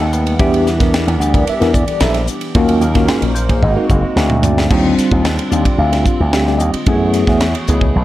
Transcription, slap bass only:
Already playing: D#2
0.39 E2
1.07 E2
1.20 D2
1.49 muted slap bass stroke
1.61 E2
1.88 muted slap bass stroke
2.01 A#1
2.55 D#2
2.81 D#2
3.08 G#2
3.22 A#1
3.63 G#1
3.90 F#1
4.16 D2
4.71 D#2
4.98 muted slap bass stroke
5.12 D#2
5.51 D#2
5.78 D2
6.20 D2
6.60 D#2
6.74 muted slap bass stroke
6.87 F#2
7.28 E2
7.69 C#2
7.96 B1

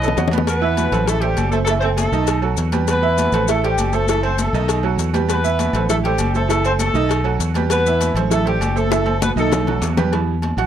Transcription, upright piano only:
0.03 A3 A4 A5
0.17 F#3 F#4 F#5
0.32 B3 B4 B5
0.61 E3 E4 E5
0.92 A3 A4 C5
1.08 E3 E4 E5
1.22 A3 A4 C5
1.52 A3 A4 C5
1.68 E3 E4 E5
1.83 A3 A4 C5
2.12 D#3 D#4 D#5
2.42 F#3 F#4 A4
2.73 G3 G4 B4
3.02 E3 E4 E5
3.33 A3 A4 C5
3.48 E3 E4 E5
3.64 A3 A4 C5
3.93 A3 A4 C5
4.09 E3 E4 E5
4.24 A3 A4 C5
4.54 D#3 D#4 D#5
4.83 F#3 F#4 A4
5.13 G3 G4 B4
5.44 E3 E4 E5
5.75 A3 A4 C5
5.89 E3 E4 E5
6.05 A3 A4 C5
6.35 A3 A4 C5
6.49 E3 E4 E5
6.65 A3 A4 C5
6.95 D#3 D#4 D#5
7.24 F#3 F#4 A4
7.56 G3 G4 B4
7.86 E3 E4 E5
8.16 A3 A4 C5
8.30 E3 E4 E5
8.45 A3 A4 C5
8.76 A3 A4 C5
8.91 E3 E4 E5
9.05 A3 A4 C5
9.37 D#3 D#4 D#5
9.67 F#3 F#4 A4
9.97 G3 G4 B4
10.12 E3 G3 B3
10.58 F#4 F#5

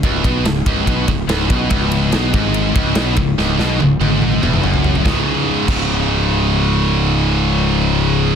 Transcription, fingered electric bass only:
0.03 C#1
0.24 B1
0.44 C#1
0.66 C#1
0.87 B1
1.08 C#1
1.28 C#1
1.50 B1
1.71 C#1
2.13 B1
2.34 G#1
2.76 C#1
2.96 B1
3.17 C#1
3.38 C#1
3.60 B1
3.80 C#1
4.01 G#1
4.43 E1
4.63 F#1
5.05 C#1
5.68 C#1

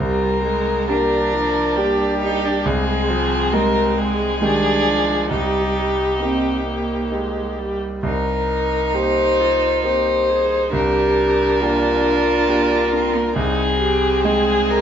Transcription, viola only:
0.00 G3
0.44 G#3
0.88 G3
1.33 F3
1.77 G3
2.65 G#3
3.10 F3
3.53 G3
3.97 G#3
4.42 G3
4.87 F3
5.32 G3
6.22 C4
6.68 A#3
7.13 G#3
7.58 G3
8.95 G4
9.40 F4
9.85 G4
10.29 G#4
10.73 G4
11.60 F4
13.36 D#4
13.80 G4
14.24 G#4

